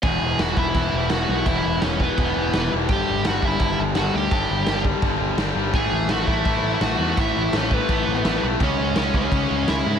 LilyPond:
<<
  \new Staff \with { instrumentName = "Lead electric guitar" } { \time 4/4 \key a \major \tempo 4 = 168 <gis' gis''>4 <fis' fis''>8 <e' e''>4. <fis' fis''>4 | <e' e''>4 <cis' cis''>8 <b b'>2 r8 | <g' g''>4 <fis' fis''>8 <e' e''>4 r8 <fis' fis''>8 <g' g''>8~ | <g' g''>4. r2 r8 |
<gis' gis''>4 <fis' fis''>8 <e' e''>4. <fis' fis''>4 | <e' e''>4 <cis' cis''>8 <b b'>2 r8 | <cis' cis''>4 <cis' cis''>8 <cis' cis''>4. <e' e''>4 | }
  \new Staff \with { instrumentName = "Distorted electric guitar" } { \clef bass \time 4/4 \key a \major <e, b, e>4 <e, b, e>8 <e, b, e>8 <e, b, e>4 <e, b, e>8 <e, b, e>8 | <e, b, e>4 <e, b, e>8 <e, b, e>8 <e, b, e>4 <e, b, e>8 <e, b, e>8 | <g, d g>4 <g, d g>8 <g, d g>8 <g, d g>4 <g, d g>8 <g, d g>8 | <g, d g>4 <g, d g>8 <g, d g>8 <g, d g>4 <g, d g>8 <g, d g>8 |
<a, e a>4 <a, e a>8 <a, e a>8 <a, e a>4 <a, e a>8 <a, e a>8 | <a, e a>4 <a, e a>8 <a, e a>8 <a, e a>4 <a, e a>8 <a, e a>8 | <cis gis cis'>4 <cis gis cis'>8 <cis gis cis'>8 <cis gis cis'>4 <cis gis cis'>8 <cis gis cis'>8 | }
  \new Staff \with { instrumentName = "Overdriven electric guitar" } { \clef bass \time 4/4 \key a \major <e, b, e>4 <e, b, e>8 <e, b, e>8 <e, b, e>4 <e, b, e>8 <e, b, e>8 | <e, b, e>4 <e, b, e>8 <e, b, e>8 <e, b, e>4 <e, b, e>8 <e, b, e>8 | <g, d g>4 <g, d g>8 <g, d g>8 <g, d g>4 <g, d g>8 <g, d g>8 | <g, d g>4 <g, d g>8 <g, d g>8 <g, d g>4 <g, d g>8 <g, d g>8 |
<a, e a>4 <a, e a>8 <a, e a>8 <a, e a>4 <a, e a>8 <a, e a>8 | <a, e a>4 <a, e a>8 <a, e a>8 <a, e a>4 <a, e a>8 <a, e a>8 | <cis gis cis'>4 <cis gis cis'>8 <cis gis cis'>8 <cis gis cis'>4 <cis gis cis'>8 <cis gis cis'>8 | }
  \new Staff \with { instrumentName = "Picked electric bass" } { \clef bass \time 4/4 \key a \major e,,8 e,,8 e,,8 e,,8 e,,8 e,,8 e,,8 b,,8 | e,,8 e,,8 e,,4 e,,8 e,,8 e,,8 e,,8 | g,,8 g,,8 g,,8 g,,8 g,,8 g,,8 g,,8 d,8 | g,,8 g,,8 g,,4 g,,8 g,,8 g,,8 g,,8 |
a,,8 a,,8 a,,8 a,,8 a,,8 a,,8 a,,8 e,8 | a,,8 a,,8 a,,4 a,,8 a,,8 a,,8 b,,8 | cis,8 cis,8 cis,8 cis,8 cis,8 cis,8 cis,8 gis,8 | }
  \new DrumStaff \with { instrumentName = "Drums" } \drummode { \time 4/4 <cymc bd>4 <cymc sn>8 bd8 <cymc bd>4 <cymc sn>4 | <cymc bd>4 <cymc sn>8 bd8 <cymc bd>4 <cymc sn>4 | <cymc bd>4 <cymc sn>8 bd8 <cymc bd>4 <cymc sn>4 | <cymc bd>4 <cymc sn>8 bd8 <cymc bd>4 <cymc sn>4 |
<cymc bd>4 <cymc sn>8 bd8 <cymc bd>4 <cymc sn>4 | <cymc bd>4 <cymc sn>8 bd8 <cymc bd>4 <cymc sn>4 | <cymc bd>4 <cymc sn>8 bd8 <cymc bd>4 <cymc sn>4 | }
>>